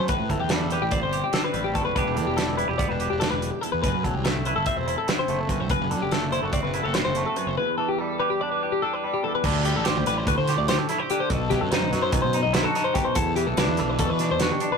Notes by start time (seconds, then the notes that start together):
0.08 A1 A2 B4, kick, closed hi-hat
0.19 A2
0.29 G1 E3 A4, kick, closed hi-hat
0.40 E2 G4
0.49 A4, snare, closed hi-hat
0.53 G3
0.70 G4 B4, closed hi-hat
0.82 A1 G4
0.91 C4 D5, kick, closed hi-hat
1.01 G1 C5
1.13 G4, closed hi-hat
1.24 G4
1.33 C4 A4, snare, closed hi-hat
1.44 B4
1.53 A1 G3, closed hi-hat
1.64 G4
1.74 A2 A4, kick, closed hi-hat
1.85 F#1 B4
1.95 E1 E2 E3 G3 D4 G4 B4, kick, closed hi-hat
2.07 E1
2.14 E2 E3 A4, closed hi-hat
2.27 E1 G4
2.37 G3 A4, snare, closed hi-hat
2.57 E4 B4, closed hi-hat
2.68 E1 G4
2.78 B3 D5, kick, closed hi-hat
2.89 E1 D4 B4
3.00 G4, closed hi-hat
3.10 E1 G4
3.20 A4, snare, closed hi-hat
3.31 E1 B4
3.42 closed hi-hat
3.51 G4
3.61 E2 A4, closed hi-hat
3.72 E2 B4
3.83 F#1 F#2 B4, kick, closed hi-hat
3.95 F#2
4.04 E1 F#3 A4, kick, closed hi-hat
4.14 C2 G4
4.24 A3 A4, snare, closed hi-hat
4.45 E4 B4, closed hi-hat
4.56 F#1 A4
4.66 C4 E5, kick, closed hi-hat
4.76 E1 C5
4.88 E4, closed hi-hat
4.98 A4
5.08 C4 B4, snare, closed hi-hat
5.19 C5
5.28 F#1 A3, closed hi-hat
5.41 A4
5.48 F#2 B4, kick, closed hi-hat
5.60 C2 C5
5.70 F#1 F#2 B4, kick, closed hi-hat
5.81 F#1
5.90 F#2 D3 A4, closed hi-hat
6.02 F#1 G4
6.12 A3 A4, snare, closed hi-hat
6.32 E4 C5, closed hi-hat
6.43 F#1 F#4 A4
6.53 C4 D5, kick, closed hi-hat
6.63 F#1 B4
6.74 E4, closed hi-hat
6.83 F#1 F#4 A4
6.94 C4 B4, snare, closed hi-hat
7.05 F#1 C5
7.15 A3, closed hi-hat
7.26 A4
7.36 F#2 B4, closed hi-hat
7.47 F#1 C5
7.58 E2 B4
7.78 E3 A4
7.89 G4
7.99 G3 A4
8.20 G4 B4
8.30 G4
8.41 D4 D5
8.52 B4
8.63 G4
8.72 G4
8.82 D4 A4
8.94 B4
9.04 G3
9.14 G4
9.23 E2 A4
9.35 B4
9.44 D2 D3 A4, kick, crash
9.64 G3 G4, closed hi-hat
9.76 A1 A4
9.84 A1 G4 C5, snare, closed hi-hat
9.97 D2
10.06 A1 B4, closed hi-hat
10.18 C5
10.26 D2 A2 B4, kick, closed hi-hat
10.38 D3 C5
10.48 G4, snare, closed hi-hat
10.57 D2 D5
10.68 G4 C5, snare, closed hi-hat
10.79 A4
10.89 E4, snare, closed hi-hat
10.98 G4 C5
11.10 D3 G4, closed hi-hat
11.20 C5
11.30 B1 B2 A4, kick, closed hi-hat
11.50 F#3 G4, kick, snare, closed hi-hat
11.61 F#2 A4
11.71 F#2 D#4 C5, snare, closed hi-hat
11.82 B1
11.91 F#2 F#3 B4, snare, closed hi-hat
12.02 C5
12.12 B1 F#2 B4, kick, closed hi-hat
12.22 B2 C5
12.33 D#4, closed hi-hat
12.43 B1 D#5
12.53 E4 C5, snare, closed hi-hat
12.63 F#4 A4
12.75 D#4, snare, closed hi-hat
12.84 C5
12.94 B2 G4, kick, snare, closed hi-hat
13.05 C5
13.15 E2 A4, kick, closed hi-hat
13.36 E3 G4, closed hi-hat
13.47 B1 A4
13.57 B1 D4 B4, snare, closed hi-hat
13.69 E2
13.77 B1 E3 A4, snare, closed hi-hat
13.89 B4
13.99 E2 B2 A4, kick, closed hi-hat
14.10 E3 B4
14.19 D4, snare, closed hi-hat
14.31 E2 C5
14.40 F#4 B4, snare, closed hi-hat
14.52 G4
14.60 D4, closed hi-hat
14.72 B4